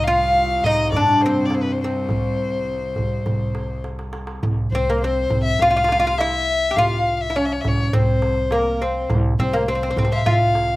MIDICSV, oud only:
0, 0, Header, 1, 2, 480
1, 0, Start_track
1, 0, Tempo, 583658
1, 1728, Time_signature, 4, 2, 24, 8
1, 8851, End_track
2, 0, Start_track
2, 0, Title_t, "Oud"
2, 0, Program_c, 0, 24
2, 62, Note_on_c, 0, 65, 98
2, 540, Note_off_c, 0, 65, 0
2, 543, Note_on_c, 0, 63, 88
2, 782, Note_off_c, 0, 63, 0
2, 792, Note_on_c, 0, 62, 82
2, 1027, Note_off_c, 0, 62, 0
2, 1033, Note_on_c, 0, 60, 85
2, 1506, Note_off_c, 0, 60, 0
2, 1516, Note_on_c, 0, 60, 65
2, 3149, Note_off_c, 0, 60, 0
2, 3905, Note_on_c, 0, 60, 83
2, 4020, Note_off_c, 0, 60, 0
2, 4026, Note_on_c, 0, 58, 74
2, 4141, Note_off_c, 0, 58, 0
2, 4146, Note_on_c, 0, 60, 78
2, 4583, Note_off_c, 0, 60, 0
2, 4623, Note_on_c, 0, 65, 97
2, 4678, Note_off_c, 0, 65, 0
2, 4691, Note_on_c, 0, 65, 71
2, 4732, Note_off_c, 0, 65, 0
2, 4742, Note_on_c, 0, 65, 77
2, 4794, Note_off_c, 0, 65, 0
2, 4804, Note_on_c, 0, 65, 67
2, 4860, Note_off_c, 0, 65, 0
2, 4869, Note_on_c, 0, 65, 87
2, 4921, Note_off_c, 0, 65, 0
2, 4931, Note_on_c, 0, 65, 77
2, 4982, Note_off_c, 0, 65, 0
2, 4992, Note_on_c, 0, 65, 79
2, 5046, Note_off_c, 0, 65, 0
2, 5103, Note_on_c, 0, 64, 88
2, 5488, Note_off_c, 0, 64, 0
2, 5517, Note_on_c, 0, 67, 69
2, 5570, Note_off_c, 0, 67, 0
2, 5579, Note_on_c, 0, 65, 96
2, 5966, Note_off_c, 0, 65, 0
2, 6003, Note_on_c, 0, 64, 63
2, 6052, Note_on_c, 0, 61, 80
2, 6053, Note_off_c, 0, 64, 0
2, 6521, Note_off_c, 0, 61, 0
2, 6525, Note_on_c, 0, 60, 87
2, 7004, Note_off_c, 0, 60, 0
2, 7007, Note_on_c, 0, 58, 76
2, 7251, Note_on_c, 0, 60, 65
2, 7253, Note_off_c, 0, 58, 0
2, 7471, Note_off_c, 0, 60, 0
2, 7728, Note_on_c, 0, 60, 80
2, 7840, Note_on_c, 0, 58, 73
2, 7849, Note_off_c, 0, 60, 0
2, 7954, Note_off_c, 0, 58, 0
2, 7964, Note_on_c, 0, 60, 72
2, 8010, Note_off_c, 0, 60, 0
2, 8019, Note_on_c, 0, 60, 51
2, 8075, Note_off_c, 0, 60, 0
2, 8084, Note_on_c, 0, 60, 64
2, 8136, Note_off_c, 0, 60, 0
2, 8146, Note_on_c, 0, 60, 59
2, 8200, Note_off_c, 0, 60, 0
2, 8210, Note_on_c, 0, 60, 67
2, 8252, Note_off_c, 0, 60, 0
2, 8262, Note_on_c, 0, 60, 54
2, 8314, Note_off_c, 0, 60, 0
2, 8323, Note_on_c, 0, 60, 57
2, 8390, Note_off_c, 0, 60, 0
2, 8439, Note_on_c, 0, 65, 91
2, 8851, Note_off_c, 0, 65, 0
2, 8851, End_track
0, 0, End_of_file